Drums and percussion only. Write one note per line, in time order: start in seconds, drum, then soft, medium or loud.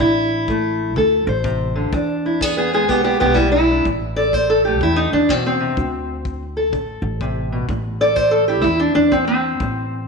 0.00 kick medium
0.48 kick medium
0.96 kick medium
1.44 kick medium
1.93 kick medium
2.41 kick medium
2.89 kick medium
3.37 kick medium
3.85 kick medium
4.33 kick medium
4.81 kick medium
5.29 kick medium
5.77 kick medium
6.25 kick medium
6.73 kick medium
7.21 kick medium
7.69 kick medium
8.16 kick medium
8.64 kick medium
9.12 kick medium
9.60 kick medium